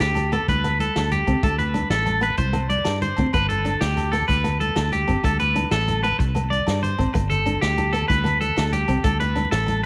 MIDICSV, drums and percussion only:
0, 0, Header, 1, 2, 480
1, 0, Start_track
1, 0, Key_signature, 1, "major"
1, 0, Tempo, 317292
1, 2163, Time_signature, 12, 3, 24, 8
1, 14910, End_track
2, 0, Start_track
2, 0, Title_t, "Drums"
2, 0, Note_on_c, 9, 38, 78
2, 0, Note_on_c, 9, 42, 62
2, 151, Note_off_c, 9, 38, 0
2, 151, Note_off_c, 9, 42, 0
2, 229, Note_on_c, 9, 68, 56
2, 246, Note_on_c, 9, 63, 80
2, 246, Note_on_c, 9, 64, 82
2, 249, Note_on_c, 9, 42, 43
2, 380, Note_off_c, 9, 68, 0
2, 397, Note_off_c, 9, 63, 0
2, 397, Note_off_c, 9, 64, 0
2, 400, Note_off_c, 9, 42, 0
2, 485, Note_on_c, 9, 68, 57
2, 492, Note_on_c, 9, 42, 41
2, 607, Note_on_c, 9, 64, 62
2, 636, Note_off_c, 9, 68, 0
2, 643, Note_off_c, 9, 42, 0
2, 733, Note_on_c, 9, 36, 80
2, 733, Note_on_c, 9, 42, 55
2, 734, Note_off_c, 9, 64, 0
2, 734, Note_on_c, 9, 63, 79
2, 734, Note_on_c, 9, 64, 25
2, 884, Note_off_c, 9, 36, 0
2, 885, Note_off_c, 9, 42, 0
2, 885, Note_off_c, 9, 63, 0
2, 885, Note_off_c, 9, 64, 0
2, 968, Note_on_c, 9, 64, 75
2, 971, Note_on_c, 9, 42, 41
2, 973, Note_on_c, 9, 68, 60
2, 1120, Note_off_c, 9, 64, 0
2, 1122, Note_off_c, 9, 42, 0
2, 1124, Note_off_c, 9, 68, 0
2, 1202, Note_on_c, 9, 63, 78
2, 1212, Note_on_c, 9, 42, 43
2, 1354, Note_off_c, 9, 63, 0
2, 1363, Note_off_c, 9, 42, 0
2, 1450, Note_on_c, 9, 38, 84
2, 1450, Note_on_c, 9, 42, 57
2, 1454, Note_on_c, 9, 68, 62
2, 1601, Note_off_c, 9, 38, 0
2, 1601, Note_off_c, 9, 42, 0
2, 1605, Note_off_c, 9, 68, 0
2, 1685, Note_on_c, 9, 42, 46
2, 1695, Note_on_c, 9, 63, 72
2, 1695, Note_on_c, 9, 64, 77
2, 1836, Note_off_c, 9, 42, 0
2, 1847, Note_off_c, 9, 63, 0
2, 1847, Note_off_c, 9, 64, 0
2, 1924, Note_on_c, 9, 68, 62
2, 1928, Note_on_c, 9, 42, 36
2, 1929, Note_on_c, 9, 36, 52
2, 2044, Note_on_c, 9, 64, 62
2, 2076, Note_off_c, 9, 68, 0
2, 2079, Note_off_c, 9, 42, 0
2, 2080, Note_off_c, 9, 36, 0
2, 2165, Note_on_c, 9, 42, 63
2, 2166, Note_on_c, 9, 36, 92
2, 2169, Note_off_c, 9, 64, 0
2, 2169, Note_on_c, 9, 63, 76
2, 2169, Note_on_c, 9, 64, 22
2, 2169, Note_on_c, 9, 68, 59
2, 2316, Note_off_c, 9, 42, 0
2, 2318, Note_off_c, 9, 36, 0
2, 2320, Note_off_c, 9, 63, 0
2, 2320, Note_off_c, 9, 64, 0
2, 2320, Note_off_c, 9, 68, 0
2, 2403, Note_on_c, 9, 42, 42
2, 2404, Note_on_c, 9, 64, 83
2, 2554, Note_off_c, 9, 42, 0
2, 2556, Note_off_c, 9, 64, 0
2, 2634, Note_on_c, 9, 68, 63
2, 2644, Note_on_c, 9, 63, 72
2, 2644, Note_on_c, 9, 64, 25
2, 2651, Note_on_c, 9, 42, 46
2, 2755, Note_off_c, 9, 64, 0
2, 2755, Note_on_c, 9, 64, 65
2, 2785, Note_off_c, 9, 68, 0
2, 2795, Note_off_c, 9, 63, 0
2, 2802, Note_off_c, 9, 42, 0
2, 2879, Note_on_c, 9, 38, 86
2, 2879, Note_on_c, 9, 42, 61
2, 2906, Note_off_c, 9, 64, 0
2, 2997, Note_on_c, 9, 64, 24
2, 3030, Note_off_c, 9, 38, 0
2, 3030, Note_off_c, 9, 42, 0
2, 3112, Note_on_c, 9, 68, 59
2, 3125, Note_on_c, 9, 42, 44
2, 3126, Note_off_c, 9, 64, 0
2, 3126, Note_on_c, 9, 63, 75
2, 3126, Note_on_c, 9, 64, 76
2, 3253, Note_off_c, 9, 64, 0
2, 3253, Note_on_c, 9, 64, 22
2, 3264, Note_off_c, 9, 68, 0
2, 3276, Note_off_c, 9, 42, 0
2, 3278, Note_off_c, 9, 63, 0
2, 3350, Note_on_c, 9, 68, 60
2, 3361, Note_on_c, 9, 42, 43
2, 3371, Note_off_c, 9, 64, 0
2, 3371, Note_on_c, 9, 64, 24
2, 3485, Note_off_c, 9, 64, 0
2, 3485, Note_on_c, 9, 64, 62
2, 3501, Note_off_c, 9, 68, 0
2, 3512, Note_off_c, 9, 42, 0
2, 3590, Note_on_c, 9, 42, 61
2, 3603, Note_on_c, 9, 36, 78
2, 3611, Note_on_c, 9, 63, 73
2, 3636, Note_off_c, 9, 64, 0
2, 3741, Note_off_c, 9, 42, 0
2, 3754, Note_off_c, 9, 36, 0
2, 3762, Note_off_c, 9, 63, 0
2, 3832, Note_on_c, 9, 68, 61
2, 3835, Note_on_c, 9, 42, 45
2, 3852, Note_on_c, 9, 64, 81
2, 3984, Note_off_c, 9, 68, 0
2, 3986, Note_off_c, 9, 42, 0
2, 4003, Note_off_c, 9, 64, 0
2, 4081, Note_on_c, 9, 42, 47
2, 4085, Note_on_c, 9, 63, 78
2, 4085, Note_on_c, 9, 64, 23
2, 4211, Note_off_c, 9, 64, 0
2, 4211, Note_on_c, 9, 64, 58
2, 4232, Note_off_c, 9, 42, 0
2, 4236, Note_off_c, 9, 63, 0
2, 4304, Note_on_c, 9, 68, 63
2, 4311, Note_on_c, 9, 38, 78
2, 4311, Note_on_c, 9, 42, 69
2, 4363, Note_off_c, 9, 64, 0
2, 4456, Note_off_c, 9, 68, 0
2, 4462, Note_on_c, 9, 64, 29
2, 4463, Note_off_c, 9, 38, 0
2, 4463, Note_off_c, 9, 42, 0
2, 4563, Note_on_c, 9, 42, 45
2, 4567, Note_off_c, 9, 64, 0
2, 4567, Note_on_c, 9, 63, 70
2, 4567, Note_on_c, 9, 64, 78
2, 4714, Note_off_c, 9, 42, 0
2, 4718, Note_off_c, 9, 63, 0
2, 4718, Note_off_c, 9, 64, 0
2, 4789, Note_on_c, 9, 68, 59
2, 4803, Note_on_c, 9, 42, 40
2, 4810, Note_on_c, 9, 36, 51
2, 4937, Note_on_c, 9, 64, 64
2, 4941, Note_off_c, 9, 68, 0
2, 4955, Note_off_c, 9, 42, 0
2, 4961, Note_off_c, 9, 36, 0
2, 5039, Note_on_c, 9, 68, 56
2, 5047, Note_on_c, 9, 63, 86
2, 5050, Note_on_c, 9, 42, 61
2, 5052, Note_on_c, 9, 36, 89
2, 5088, Note_off_c, 9, 64, 0
2, 5190, Note_off_c, 9, 68, 0
2, 5198, Note_off_c, 9, 63, 0
2, 5202, Note_off_c, 9, 42, 0
2, 5203, Note_off_c, 9, 36, 0
2, 5288, Note_on_c, 9, 42, 49
2, 5300, Note_on_c, 9, 64, 82
2, 5414, Note_off_c, 9, 64, 0
2, 5414, Note_on_c, 9, 64, 27
2, 5440, Note_off_c, 9, 42, 0
2, 5517, Note_on_c, 9, 68, 57
2, 5529, Note_off_c, 9, 64, 0
2, 5529, Note_on_c, 9, 63, 80
2, 5529, Note_on_c, 9, 64, 26
2, 5534, Note_on_c, 9, 42, 38
2, 5657, Note_off_c, 9, 64, 0
2, 5657, Note_on_c, 9, 64, 58
2, 5668, Note_off_c, 9, 68, 0
2, 5680, Note_off_c, 9, 63, 0
2, 5685, Note_off_c, 9, 42, 0
2, 5764, Note_on_c, 9, 38, 80
2, 5764, Note_on_c, 9, 42, 61
2, 5809, Note_off_c, 9, 64, 0
2, 5916, Note_off_c, 9, 38, 0
2, 5916, Note_off_c, 9, 42, 0
2, 6008, Note_on_c, 9, 64, 81
2, 6008, Note_on_c, 9, 68, 57
2, 6017, Note_on_c, 9, 42, 40
2, 6159, Note_off_c, 9, 64, 0
2, 6159, Note_off_c, 9, 68, 0
2, 6168, Note_off_c, 9, 42, 0
2, 6242, Note_on_c, 9, 68, 55
2, 6248, Note_on_c, 9, 38, 22
2, 6248, Note_on_c, 9, 42, 38
2, 6381, Note_on_c, 9, 64, 59
2, 6394, Note_off_c, 9, 68, 0
2, 6399, Note_off_c, 9, 38, 0
2, 6399, Note_off_c, 9, 42, 0
2, 6482, Note_off_c, 9, 64, 0
2, 6482, Note_on_c, 9, 63, 76
2, 6482, Note_on_c, 9, 64, 24
2, 6488, Note_on_c, 9, 42, 54
2, 6491, Note_on_c, 9, 36, 74
2, 6633, Note_off_c, 9, 63, 0
2, 6633, Note_off_c, 9, 64, 0
2, 6639, Note_off_c, 9, 42, 0
2, 6643, Note_off_c, 9, 36, 0
2, 6723, Note_on_c, 9, 68, 60
2, 6726, Note_on_c, 9, 42, 45
2, 6740, Note_on_c, 9, 64, 75
2, 6874, Note_off_c, 9, 68, 0
2, 6878, Note_off_c, 9, 42, 0
2, 6891, Note_off_c, 9, 64, 0
2, 6969, Note_on_c, 9, 42, 45
2, 6975, Note_on_c, 9, 63, 77
2, 7098, Note_on_c, 9, 64, 62
2, 7120, Note_off_c, 9, 42, 0
2, 7126, Note_off_c, 9, 63, 0
2, 7197, Note_on_c, 9, 68, 62
2, 7203, Note_on_c, 9, 38, 85
2, 7203, Note_on_c, 9, 42, 62
2, 7249, Note_off_c, 9, 64, 0
2, 7348, Note_off_c, 9, 68, 0
2, 7354, Note_off_c, 9, 38, 0
2, 7354, Note_off_c, 9, 42, 0
2, 7444, Note_on_c, 9, 63, 72
2, 7444, Note_on_c, 9, 64, 69
2, 7450, Note_on_c, 9, 42, 49
2, 7577, Note_off_c, 9, 64, 0
2, 7577, Note_on_c, 9, 64, 25
2, 7595, Note_off_c, 9, 63, 0
2, 7601, Note_off_c, 9, 42, 0
2, 7679, Note_on_c, 9, 68, 60
2, 7693, Note_on_c, 9, 36, 53
2, 7693, Note_on_c, 9, 42, 44
2, 7696, Note_off_c, 9, 64, 0
2, 7696, Note_on_c, 9, 64, 25
2, 7809, Note_off_c, 9, 64, 0
2, 7809, Note_on_c, 9, 64, 63
2, 7830, Note_off_c, 9, 68, 0
2, 7844, Note_off_c, 9, 36, 0
2, 7845, Note_off_c, 9, 42, 0
2, 7922, Note_on_c, 9, 68, 58
2, 7924, Note_on_c, 9, 63, 82
2, 7932, Note_on_c, 9, 36, 85
2, 7934, Note_on_c, 9, 42, 67
2, 7961, Note_off_c, 9, 64, 0
2, 8074, Note_off_c, 9, 68, 0
2, 8075, Note_off_c, 9, 63, 0
2, 8083, Note_off_c, 9, 36, 0
2, 8086, Note_off_c, 9, 42, 0
2, 8157, Note_on_c, 9, 64, 72
2, 8161, Note_on_c, 9, 42, 45
2, 8289, Note_off_c, 9, 64, 0
2, 8289, Note_on_c, 9, 64, 26
2, 8313, Note_off_c, 9, 42, 0
2, 8406, Note_off_c, 9, 64, 0
2, 8406, Note_on_c, 9, 42, 45
2, 8406, Note_on_c, 9, 63, 79
2, 8406, Note_on_c, 9, 64, 22
2, 8413, Note_on_c, 9, 68, 59
2, 8525, Note_off_c, 9, 64, 0
2, 8525, Note_on_c, 9, 64, 57
2, 8557, Note_off_c, 9, 63, 0
2, 8558, Note_off_c, 9, 42, 0
2, 8564, Note_off_c, 9, 68, 0
2, 8641, Note_on_c, 9, 38, 83
2, 8641, Note_on_c, 9, 42, 65
2, 8676, Note_off_c, 9, 64, 0
2, 8793, Note_off_c, 9, 38, 0
2, 8793, Note_off_c, 9, 42, 0
2, 8891, Note_on_c, 9, 63, 80
2, 8891, Note_on_c, 9, 64, 82
2, 8895, Note_on_c, 9, 68, 57
2, 8896, Note_on_c, 9, 42, 49
2, 9043, Note_off_c, 9, 63, 0
2, 9043, Note_off_c, 9, 64, 0
2, 9047, Note_off_c, 9, 42, 0
2, 9047, Note_off_c, 9, 68, 0
2, 9136, Note_on_c, 9, 68, 58
2, 9139, Note_on_c, 9, 42, 43
2, 9241, Note_on_c, 9, 64, 58
2, 9287, Note_off_c, 9, 68, 0
2, 9290, Note_off_c, 9, 42, 0
2, 9361, Note_off_c, 9, 64, 0
2, 9361, Note_on_c, 9, 63, 78
2, 9361, Note_on_c, 9, 64, 24
2, 9377, Note_on_c, 9, 36, 75
2, 9377, Note_on_c, 9, 42, 54
2, 9512, Note_off_c, 9, 63, 0
2, 9512, Note_off_c, 9, 64, 0
2, 9528, Note_off_c, 9, 36, 0
2, 9528, Note_off_c, 9, 42, 0
2, 9601, Note_on_c, 9, 64, 76
2, 9606, Note_on_c, 9, 68, 60
2, 9622, Note_on_c, 9, 42, 43
2, 9752, Note_off_c, 9, 64, 0
2, 9758, Note_off_c, 9, 68, 0
2, 9773, Note_off_c, 9, 42, 0
2, 9845, Note_on_c, 9, 63, 79
2, 9869, Note_on_c, 9, 42, 45
2, 9968, Note_on_c, 9, 64, 60
2, 9996, Note_off_c, 9, 63, 0
2, 10020, Note_off_c, 9, 42, 0
2, 10085, Note_on_c, 9, 68, 60
2, 10100, Note_on_c, 9, 38, 77
2, 10100, Note_on_c, 9, 42, 57
2, 10119, Note_off_c, 9, 64, 0
2, 10236, Note_off_c, 9, 68, 0
2, 10251, Note_off_c, 9, 38, 0
2, 10251, Note_off_c, 9, 42, 0
2, 10325, Note_on_c, 9, 64, 73
2, 10343, Note_on_c, 9, 42, 41
2, 10477, Note_off_c, 9, 64, 0
2, 10494, Note_off_c, 9, 42, 0
2, 10567, Note_on_c, 9, 68, 58
2, 10580, Note_on_c, 9, 36, 54
2, 10592, Note_on_c, 9, 42, 40
2, 10685, Note_on_c, 9, 64, 65
2, 10718, Note_off_c, 9, 68, 0
2, 10731, Note_off_c, 9, 36, 0
2, 10744, Note_off_c, 9, 42, 0
2, 10796, Note_on_c, 9, 68, 55
2, 10812, Note_on_c, 9, 63, 78
2, 10819, Note_on_c, 9, 36, 80
2, 10824, Note_on_c, 9, 42, 64
2, 10836, Note_off_c, 9, 64, 0
2, 10947, Note_off_c, 9, 68, 0
2, 10964, Note_off_c, 9, 63, 0
2, 10970, Note_off_c, 9, 36, 0
2, 10975, Note_off_c, 9, 42, 0
2, 11052, Note_on_c, 9, 64, 82
2, 11057, Note_on_c, 9, 42, 48
2, 11182, Note_off_c, 9, 64, 0
2, 11182, Note_on_c, 9, 64, 28
2, 11209, Note_off_c, 9, 42, 0
2, 11281, Note_on_c, 9, 68, 54
2, 11293, Note_on_c, 9, 42, 42
2, 11307, Note_off_c, 9, 64, 0
2, 11307, Note_on_c, 9, 63, 74
2, 11307, Note_on_c, 9, 64, 25
2, 11426, Note_off_c, 9, 64, 0
2, 11426, Note_on_c, 9, 64, 65
2, 11433, Note_off_c, 9, 68, 0
2, 11444, Note_off_c, 9, 42, 0
2, 11459, Note_off_c, 9, 63, 0
2, 11531, Note_on_c, 9, 38, 83
2, 11531, Note_on_c, 9, 42, 59
2, 11577, Note_off_c, 9, 64, 0
2, 11682, Note_off_c, 9, 38, 0
2, 11682, Note_off_c, 9, 42, 0
2, 11765, Note_on_c, 9, 68, 57
2, 11767, Note_on_c, 9, 42, 45
2, 11775, Note_on_c, 9, 63, 85
2, 11775, Note_on_c, 9, 64, 86
2, 11916, Note_off_c, 9, 68, 0
2, 11918, Note_off_c, 9, 42, 0
2, 11926, Note_off_c, 9, 63, 0
2, 11926, Note_off_c, 9, 64, 0
2, 12013, Note_on_c, 9, 68, 59
2, 12015, Note_on_c, 9, 42, 46
2, 12129, Note_on_c, 9, 64, 68
2, 12164, Note_off_c, 9, 68, 0
2, 12166, Note_off_c, 9, 42, 0
2, 12250, Note_off_c, 9, 64, 0
2, 12250, Note_on_c, 9, 63, 84
2, 12250, Note_on_c, 9, 64, 23
2, 12251, Note_on_c, 9, 36, 81
2, 12257, Note_on_c, 9, 42, 68
2, 12401, Note_off_c, 9, 63, 0
2, 12401, Note_off_c, 9, 64, 0
2, 12402, Note_off_c, 9, 36, 0
2, 12408, Note_off_c, 9, 42, 0
2, 12478, Note_on_c, 9, 68, 60
2, 12486, Note_on_c, 9, 64, 87
2, 12495, Note_on_c, 9, 42, 45
2, 12629, Note_off_c, 9, 68, 0
2, 12638, Note_off_c, 9, 64, 0
2, 12647, Note_off_c, 9, 42, 0
2, 12728, Note_on_c, 9, 63, 81
2, 12730, Note_on_c, 9, 42, 47
2, 12845, Note_on_c, 9, 64, 71
2, 12879, Note_off_c, 9, 63, 0
2, 12881, Note_off_c, 9, 42, 0
2, 12957, Note_on_c, 9, 68, 62
2, 12972, Note_on_c, 9, 38, 86
2, 12972, Note_on_c, 9, 42, 65
2, 12996, Note_off_c, 9, 64, 0
2, 13108, Note_off_c, 9, 68, 0
2, 13123, Note_off_c, 9, 38, 0
2, 13123, Note_off_c, 9, 42, 0
2, 13204, Note_on_c, 9, 42, 50
2, 13209, Note_on_c, 9, 63, 75
2, 13209, Note_on_c, 9, 64, 76
2, 13349, Note_off_c, 9, 64, 0
2, 13349, Note_on_c, 9, 64, 25
2, 13355, Note_off_c, 9, 42, 0
2, 13360, Note_off_c, 9, 63, 0
2, 13433, Note_on_c, 9, 68, 64
2, 13443, Note_on_c, 9, 42, 43
2, 13444, Note_on_c, 9, 36, 50
2, 13456, Note_off_c, 9, 64, 0
2, 13456, Note_on_c, 9, 64, 24
2, 13577, Note_off_c, 9, 64, 0
2, 13577, Note_on_c, 9, 64, 68
2, 13584, Note_off_c, 9, 68, 0
2, 13594, Note_off_c, 9, 42, 0
2, 13595, Note_off_c, 9, 36, 0
2, 13672, Note_on_c, 9, 42, 67
2, 13681, Note_on_c, 9, 36, 91
2, 13681, Note_on_c, 9, 68, 56
2, 13689, Note_on_c, 9, 63, 84
2, 13728, Note_off_c, 9, 64, 0
2, 13803, Note_on_c, 9, 64, 29
2, 13823, Note_off_c, 9, 42, 0
2, 13832, Note_off_c, 9, 36, 0
2, 13832, Note_off_c, 9, 68, 0
2, 13840, Note_off_c, 9, 63, 0
2, 13923, Note_on_c, 9, 42, 46
2, 13926, Note_off_c, 9, 64, 0
2, 13926, Note_on_c, 9, 64, 86
2, 14074, Note_off_c, 9, 42, 0
2, 14077, Note_off_c, 9, 64, 0
2, 14152, Note_on_c, 9, 68, 64
2, 14167, Note_on_c, 9, 42, 38
2, 14167, Note_on_c, 9, 63, 82
2, 14167, Note_on_c, 9, 64, 25
2, 14292, Note_off_c, 9, 64, 0
2, 14292, Note_on_c, 9, 64, 61
2, 14303, Note_off_c, 9, 68, 0
2, 14318, Note_off_c, 9, 42, 0
2, 14319, Note_off_c, 9, 63, 0
2, 14401, Note_on_c, 9, 38, 77
2, 14401, Note_on_c, 9, 42, 62
2, 14407, Note_off_c, 9, 64, 0
2, 14407, Note_on_c, 9, 64, 23
2, 14552, Note_off_c, 9, 38, 0
2, 14552, Note_off_c, 9, 42, 0
2, 14558, Note_off_c, 9, 64, 0
2, 14624, Note_on_c, 9, 68, 56
2, 14645, Note_on_c, 9, 42, 40
2, 14647, Note_on_c, 9, 63, 88
2, 14647, Note_on_c, 9, 64, 83
2, 14772, Note_off_c, 9, 64, 0
2, 14772, Note_on_c, 9, 64, 22
2, 14775, Note_off_c, 9, 68, 0
2, 14796, Note_off_c, 9, 42, 0
2, 14798, Note_off_c, 9, 63, 0
2, 14910, Note_off_c, 9, 64, 0
2, 14910, End_track
0, 0, End_of_file